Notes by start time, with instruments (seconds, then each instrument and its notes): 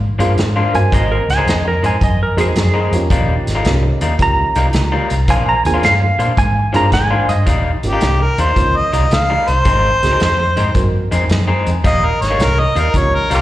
0.19 fingered electric bass G2, clean electric guitar F3 A#3 D4 F4, upright piano A#3 C4 D4 F4 G#4, closed hi-hat
0.37 fingered electric bass G#2, snare, closed hi-hat
0.56 clean electric guitar F3 A#3 D4 F4
0.73 fingered electric bass G2, upright piano A#3 C4 D#4 F#4 A#4, electric slide guitar G#5, closed hi-hat
0.92 fingered electric bass G#1, clean electric guitar D#3 G#3 C4 D#4, electric slide guitar D#5, kick, closed hi-hat
1.12 electric slide guitar A#4
1.29 fingered electric bass C#2, electric slide guitar G#5, snare, closed hi-hat
1.37 clean electric guitar D#3 G#3 C4 D#4
1.46 fingered electric bass F2, electric slide guitar D#5, snare, closed hi-hat
1.65 electric slide guitar A#4, muted clean electric guitar stroke
1.83 fingered electric bass G#2, clean electric guitar D#3 G#3 C4 D#4, electric slide guitar G#5, closed hi-hat
2.01 fingered electric bass F#2, electric slide guitar D#5, kick, closed hi-hat
2.23 electric slide guitar A#4
2.37 fingered electric bass F2, clean electric guitar D#3 G#3 C4 D#4, upright piano A#3 C4 D#4 F#4 G#4, electric slide guitar G#4, closed hi-hat
2.55 fingered electric bass F#2, snare, closed hi-hat
2.74 clean electric guitar D#3 G#3 C4 D#4
2.91 fingered electric bass F2, upright piano A#3 C#4 D#4 F4 G4, closed hi-hat
3.10 fingered electric bass D#1, clean electric guitar D#3 G3 A#3 D#4, kick, closed hi-hat
3.47 fingered electric bass G#1, snare, closed hi-hat
3.55 clean electric guitar D#3 G3 A#3 D#4
3.65 fingered electric bass C2, upright piano A#3 C#4 D#4 F4 G4, snare, closed hi-hat
3.83 muted clean electric guitar stroke
4.01 fingered electric bass D#2, clean electric guitar D#3 G3 A#3 D#4, closed hi-hat
4.19 fingered electric bass C#2, upright piano A#3 C#4 D#4 F4 G4, electric slide guitar A#5, kick, closed hi-hat
4.55 fingered electric bass C2, clean electric guitar D#3 G3 A#3 D#4, closed hi-hat
4.73 fingered electric bass C#2, snare, closed hi-hat
4.92 clean electric guitar D#3 G3 A#3 D#4
5.10 fingered electric bass C2, closed hi-hat
5.28 fingered electric bass A#1, clean electric guitar F3 A#3 D4 F4, electric slide guitar G#5, kick, closed hi-hat
5.49 electric slide guitar A#5
5.65 fingered electric bass D#2, upright piano A#3 C4 D4 F4 G#4, electric slide guitar G#5, closed hi-hat
5.74 clean electric guitar F3 A#3 D4 F4
5.83 fingered electric bass G2, electric slide guitar F5, snare, closed hi-hat
6.00 muted clean electric guitar stroke
6.19 fingered electric bass A#2, clean electric guitar F3 A#3 D4 F4, closed hi-hat
6.37 fingered electric bass G#2, electric slide guitar G#5, kick, closed hi-hat
6.73 fingered electric bass G2, clean electric guitar F3 A#3 D4 F4, upright piano A#3 C4 D4 F4 G#4, electric slide guitar A#5, closed hi-hat
6.92 fingered electric bass G#2, electric slide guitar G#5, kick, snare, closed hi-hat
7.10 clean electric guitar F3 A#3 D4 F4
7.29 fingered electric bass G2, electric slide guitar D#5, closed hi-hat
7.46 fingered electric bass D#1, clean electric guitar D#3 G3 A#3 D#4, kick, closed hi-hat
7.83 fingered electric bass G#1, upright piano A#3 C#4 D#4 F4 G4, harmonica G4, closed hi-hat
7.93 clean electric guitar D#3 G3 A#3 D#4
8.01 fingered electric bass C2, snare, closed hi-hat
8.20 harmonica A#4, muted clean electric guitar stroke
8.38 fingered electric bass D#2, clean electric guitar D#3 G3 A#3 D#4, harmonica C5, closed hi-hat
8.56 fingered electric bass C#2, upright piano A#3 C#4 D#4 F4 A#4, kick, closed hi-hat
8.77 harmonica D#5
8.93 fingered electric bass C2, clean electric guitar D#3 G3 A#3 D#4, closed hi-hat
9.11 fingered electric bass C#2, harmonica F5, snare, closed hi-hat
9.30 clean electric guitar D#3 G3 A#3 D#4
9.47 fingered electric bass C2, harmonica C5, closed hi-hat
9.65 fingered electric bass G#1, clean electric guitar D#3 G#3 C4 D#4, kick, closed hi-hat
10.03 fingered electric bass C#2, upright piano A#3 C4 D#4 F#4 G#4, snare, closed hi-hat
10.11 clean electric guitar D#3 G#3 C4 D#4
10.20 fingered electric bass F2, snare, closed hi-hat
10.38 muted clean electric guitar stroke
10.56 fingered electric bass G#2, clean electric guitar D#3 G#3 C4 D#4, closed hi-hat
10.75 fingered electric bass F#2, upright piano A#3 C4 D#4 F#4 A#4, kick, closed hi-hat
11.11 fingered electric bass F2, clean electric guitar D#3 G#3 C4 D#4, closed hi-hat
11.29 fingered electric bass F#2, snare, closed hi-hat
11.48 clean electric guitar D#3 G#3 C4 D#4
11.67 fingered electric bass F2, closed hi-hat
11.84 fingered electric bass D#1, clean electric guitar D#3 G3 A#3 D#4, harmonica D#5, kick, closed hi-hat
12.06 harmonica A#4
12.21 fingered electric bass G#1, harmonica C#5, snare, closed hi-hat
12.30 clean electric guitar D#3 G3 A#3 D#4
12.39 fingered electric bass C2, snare, closed hi-hat
12.43 harmonica A#4
12.58 harmonica D#5, muted clean electric guitar stroke
12.75 fingered electric bass D#2, clean electric guitar D#3 G3 A#3 D#4, harmonica A#4, closed hi-hat
12.94 fingered electric bass C#2, upright piano A#3 C#4 D#4 F4 G4, harmonica C#5, kick, closed hi-hat
13.15 harmonica A#4
13.30 fingered electric bass C2, clean electric guitar D#3 G3 A#3 D#4, closed hi-hat
13.34 harmonica F4 G4 A#4